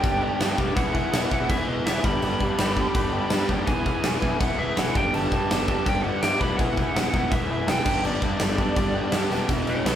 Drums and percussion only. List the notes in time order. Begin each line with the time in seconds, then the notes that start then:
0.04 kick, crash
0.40 snare, crash
0.58 kick
0.77 kick, crash
0.95 kick
1.13 snare, crash
1.31 kick
1.50 kick, crash
1.86 snare, crash
2.04 kick
2.22 crash
2.40 kick
2.58 snare, crash
2.77 kick
2.95 kick, crash
3.30 snare, crash
3.49 kick
3.67 kick, crash
3.86 kick
4.03 snare, crash
4.22 kick
4.41 kick, crash
4.77 snare, crash
4.95 kick
5.14 crash
5.32 kick
5.51 snare, crash
5.68 kick
5.86 kick, crash
6.22 snare, crash
6.41 kick
6.59 kick, crash
6.77 kick
6.96 snare, crash
7.14 kick
7.32 kick, crash
7.68 snare, crash
7.85 kick, crash
8.05 crash
8.22 kick
8.39 snare, crash
8.58 kick
8.76 kick, crash
9.12 snare, crash
9.31 snare
9.49 kick, crash
9.67 crash
9.86 snare, crash